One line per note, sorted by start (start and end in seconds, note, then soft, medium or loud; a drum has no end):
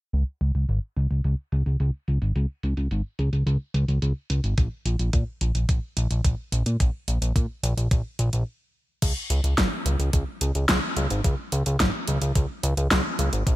0.13 0.24 C#2 loud
0.13 closed hi-hat medium
0.41 0.52 C#2 medium
0.41 closed hi-hat medium
0.55 0.66 C#2 medium
0.55 closed hi-hat medium
0.69 0.79 G#1 medium
0.69 closed hi-hat medium
0.97 1.07 C#2 medium
0.97 closed hi-hat medium
1.11 1.21 C#2 medium
1.11 closed hi-hat medium
1.24 1.35 C#2 medium
1.24 closed hi-hat medium
1.52 1.63 C#2 medium
1.52 closed hi-hat medium
1.66 1.77 C#2 medium
1.66 closed hi-hat soft
1.80 1.91 C#2 loud
1.80 closed hi-hat medium
2.08 2.19 C#2 medium
2.08 closed hi-hat medium
2.22 2.32 G#1 medium
2.22 closed hi-hat medium
2.36 2.46 C#2 medium
2.36 closed hi-hat medium
2.63 2.74 C#2 medium
2.63 closed hi-hat medium
2.77 2.88 C#2 medium
2.77 closed hi-hat medium
2.91 3.02 G#1 loud
2.91 closed hi-hat medium
3.19 3.30 C#2 medium
3.19 closed hi-hat medium
3.33 3.43 C#2 medium
3.33 closed hi-hat soft
3.47 3.57 C#2 loud
3.47 closed hi-hat medium
3.74 3.85 C#2 medium
3.74 closed hi-hat medium
3.88 3.99 C#2 medium
3.88 closed hi-hat soft
4.02 4.13 C#2 medium
4.02 closed hi-hat medium
4.30 4.41 C#2 medium
4.30 closed hi-hat medium
4.44 4.55 G#1 medium
4.44 closed hi-hat medium
4.58 4.68 A#1 loud
4.58 kick loud
4.58 closed hi-hat medium
4.86 4.96 A#1 medium
4.86 closed hi-hat medium
4.99 5.10 A#1 medium
4.99 closed hi-hat medium
5.13 5.24 A#2 medium
5.13 kick loud
5.13 closed hi-hat medium
5.41 5.52 A#1 medium
5.41 closed hi-hat medium
5.55 5.66 A#1 medium
5.55 closed hi-hat soft
5.69 5.79 A#1 loud
5.69 kick loud
5.69 closed hi-hat medium
5.97 6.07 A#1 loud
5.97 closed hi-hat medium
6.11 6.21 A#1 medium
6.11 closed hi-hat medium
6.25 6.35 A#1 medium
6.25 kick loud
6.25 closed hi-hat medium
6.52 6.63 A#1 medium
6.52 closed hi-hat medium
6.66 6.77 A#2 medium
6.66 closed hi-hat medium
6.80 6.91 A#1 loud
6.80 kick loud
6.80 closed hi-hat medium
7.08 7.18 A#1 medium
7.08 closed hi-hat medium
7.22 7.32 A#1 medium
7.22 closed hi-hat medium
7.36 7.46 A#2 loud
7.36 kick loud
7.36 closed hi-hat medium
7.63 7.74 A#1 loud
7.63 closed hi-hat medium
7.77 7.88 A#1 medium
7.77 closed hi-hat soft
7.91 8.02 A#1 loud
7.91 kick loud
7.91 closed hi-hat medium
8.19 8.30 A#1 loud
8.19 closed hi-hat medium
8.33 8.44 A#1 medium
8.33 closed hi-hat soft
9.02 9.13 C#2 loud
9.02 kick loud
9.02 closed hi-hat medium
9.02 crash medium
9.30 9.41 C#2 medium
9.30 closed hi-hat medium
9.44 9.55 C#2 medium
9.44 closed hi-hat medium
9.58 9.68 G#1 loud
9.58 kick loud
9.58 snare loud
9.58 closed hi-hat medium
9.86 9.96 C#2 medium
9.86 closed hi-hat medium
9.99 10.10 C#2 medium
9.99 closed hi-hat medium
10.13 10.24 C#2 loud
10.13 kick loud
10.13 closed hi-hat medium
10.41 10.52 C#2 medium
10.41 closed hi-hat medium
10.55 10.66 C#2 medium
10.55 closed hi-hat medium
10.69 10.80 C#2 loud
10.69 kick loud
10.69 snare loud
10.69 closed hi-hat medium
10.97 11.07 C#2 medium
10.97 closed hi-hat medium
11.10 11.21 G#1 medium
11.10 closed hi-hat medium
11.24 11.35 C#2 loud
11.24 kick loud
11.24 closed hi-hat medium
11.52 11.63 C#2 medium
11.52 closed hi-hat medium
11.66 11.77 C#2 medium
11.66 closed hi-hat medium
11.80 11.91 G#1 loud
11.80 kick loud
11.80 snare loud
11.80 closed hi-hat medium
12.08 12.19 C#2 medium
12.08 closed hi-hat medium
12.22 12.32 C#2 medium
12.22 closed hi-hat medium
12.35 12.46 C#2 loud
12.35 kick loud
12.35 closed hi-hat medium
12.63 12.74 C#2 loud
12.63 closed hi-hat medium
12.77 12.88 C#2 medium
12.77 closed hi-hat medium
12.91 13.02 C#2 loud
12.91 kick loud
12.91 snare loud
12.91 closed hi-hat medium
13.19 13.30 C#2 medium
13.19 closed hi-hat medium
13.33 13.43 G#1 medium
13.33 closed hi-hat medium
13.47 13.56 A#1 loud
13.47 kick loud
13.47 closed hi-hat medium